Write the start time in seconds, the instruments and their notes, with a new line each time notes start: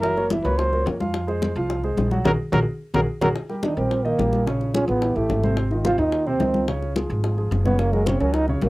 Already playing: upright bass F#1
0.00 grand piano E3 E4 E5, trombone F#3, trumpet A#4, high bongo, high conga
0.17 grand piano A#3 A#4 C#5, high bongo, high conga
0.30 grand piano E3 E4 E5, high bongo, high conga
0.43 upright bass C#2, trombone F#3, grand piano A#3 A#4 C#5, trumpet B4, high bongo, high conga
0.58 trombone F#3, trumpet C5, high bongo, high conga
0.72 grand piano A#3 A#4 C#5, high conga
0.86 upright bass F2, high bongo, low bongo, high conga
1.00 grand piano F3 F4 F5, high bongo, high conga
1.14 high bongo, high conga
1.27 grand piano G#3 G#4 C5, high bongo, high conga
1.42 high bongo, high conga
1.55 upright bass C2, grand piano F3 F4 F5, high bongo
1.70 high bongo, high conga
1.83 grand piano G#3 G#4 C5, high conga
1.97 upright bass A#1, high bongo, low bongo, high conga
2.11 grand piano F#3 F#4 F#5, high bongo, high conga
2.24 upright bass A#1, trombone F#3, grand piano F#4 G#4 A#4, trumpet A#4, low bongo, low conga
2.52 upright bass A#1, trombone F#3, grand piano F#4 G#4 A#4, trumpet A#4, low bongo, low conga
2.94 upright bass A#1, trombone F#3, grand piano F#4 G#4 A#4, trumpet A#4, low bongo, low conga
3.21 upright bass A#1, trombone F#3, grand piano F#4 G#4 A#4, trumpet A#4, low bongo, low conga
3.36 high bongo, high conga
3.49 grand piano G3 G4 A#4, high bongo, high conga
3.63 grand piano D#3 D#4 D#5, trombone D4, high bongo, high conga
3.77 upright bass A#1, grand piano G3 G4 A#4, trombone C4, high bongo
3.91 high bongo, high conga
4.04 grand piano D#3 D#4 D#5, trombone A#3, high conga
4.18 upright bass A#1, grand piano G3 G4 A#4, high bongo, low bongo, high conga
4.33 high bongo, high conga
4.46 grand piano C#3 C#4 C#5, high bongo, high conga
4.61 high bongo, high conga
4.74 grand piano F3 F4 G#4, trombone C#4, high bongo, high conga
4.88 upright bass A1, trombone B3, high bongo, high conga
5.02 grand piano E3 E4 G4, high bongo, high conga
5.15 upright bass A1, grand piano E3 E4 G4, trombone A3, high conga
5.29 upright bass G#1, high bongo, low bongo, high conga
5.43 grand piano C3 C4 C5, high bongo, high conga
5.57 high bongo, high conga
5.71 grand piano D#3 D#4 F4, high bongo, high conga
5.85 grand piano C3 C4 C5, trombone F4, high bongo, high conga
5.98 upright bass D#2, grand piano D#3 D#4 F4, trombone D#4, high bongo
6.12 high bongo, high conga
6.27 grand piano C3 C4 C5, trombone C4, high conga
6.40 upright bass C#2, grand piano D#3 D#4 F4, high bongo, low bongo, high conga
6.54 high bongo, high conga
6.68 grand piano C#3 C#4 C#5, high bongo, high conga
6.82 high bongo, high conga
6.96 grand piano F3 F4 G#4, high bongo, high conga
7.10 upright bass G#1, high bongo, high conga
7.23 grand piano F3 F4 G#4, high bongo, high conga
7.37 grand piano F3 F4 G#4, high conga
7.51 upright bass F#1, high bongo, low bongo, high conga
7.65 grand piano C#3 C#4 C#5, trombone B3, high bongo, high conga
7.79 trombone A#3, high bongo, high conga
7.92 grand piano F#3 F#4 A#4, trombone G#3, high bongo, high conga
8.06 grand piano C#3 C#4 C#5, trombone C4, high bongo, high conga
8.20 upright bass C#2, grand piano F#3 F#4 A#4, trombone C#4, high bongo
8.34 trombone D#4, high bongo, high conga
8.48 grand piano C#3 C#4 C#5, trombone F#3, high conga
8.62 upright bass A#1, grand piano F#3 F#4 A#4, trombone A#3, high bongo, low bongo, high conga